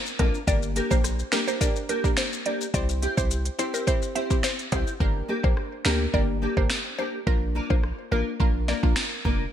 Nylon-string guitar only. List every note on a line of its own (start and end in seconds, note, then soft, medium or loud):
0.19 0.38 A#3 medium
0.19 0.38 D4 medium
0.19 0.38 F4 medium
0.19 0.38 A#4 medium
0.75 0.94 A#3 medium
0.75 0.94 D4 medium
0.75 0.95 G4 medium
0.75 0.95 A#4 loud
1.32 1.47 A#3 medium
1.32 1.47 D4 medium
1.32 1.46 G4 medium
1.32 1.46 A#4 loud
1.47 1.61 A#3 medium
1.47 1.61 D4 medium
1.47 1.61 G4 medium
1.47 1.61 A#4 medium
1.89 2.08 A#3 medium
1.89 2.08 D4 medium
1.89 2.08 G4 medium
1.89 2.08 A#4 medium
2.45 2.64 A#3 medium
2.45 2.64 D4 medium
2.45 2.65 G4 medium
2.45 2.65 A#4 medium
3.02 3.21 C4 medium
3.02 3.21 E4 medium
3.02 3.21 G4 loud
3.02 3.21 C5 medium
3.59 3.74 C4 medium
3.59 3.73 E4 medium
3.59 3.73 G4 medium
3.59 3.72 C5 medium
3.74 3.88 C4 medium
3.74 3.87 E4 medium
3.74 3.87 G4 medium
3.74 3.87 C5 medium
4.15 4.34 C4 medium
4.15 4.34 E4 medium
4.15 4.34 G4 loud
4.15 4.35 C5 loud
4.72 4.91 C4 medium
4.72 4.91 E4 medium
4.72 4.91 G4 loud
4.72 4.91 C5 medium
5.28 5.47 A#3 medium
5.28 5.47 D4 medium
5.28 5.48 G4 medium
5.28 5.48 A#4 medium
5.85 6.04 A#3 medium
5.85 6.04 D4 medium
5.85 6.04 G4 medium
5.85 6.04 A#4 medium
6.42 6.60 A#3 medium
6.42 6.61 D4 medium
6.42 6.61 G4 medium
6.42 6.61 A#4 medium
6.98 7.17 A#3 medium
6.98 7.17 D4 loud
6.98 7.17 G4 medium
6.98 7.18 A#4 loud
7.55 7.74 A#3 medium
7.55 7.74 D4 medium
7.55 7.74 F4 medium
7.55 7.74 A#4 medium
8.11 8.30 A#3 medium
8.11 8.30 D4 medium
8.11 8.31 F4 medium
8.11 8.31 A#4 medium
8.68 8.87 A#3 medium
8.68 8.87 D4 medium
8.68 8.87 F4 medium
8.68 8.87 A#4 medium
9.24 9.43 A#3 medium
9.24 9.44 D4 medium
9.24 9.44 F4 medium
9.24 9.44 A#4 loud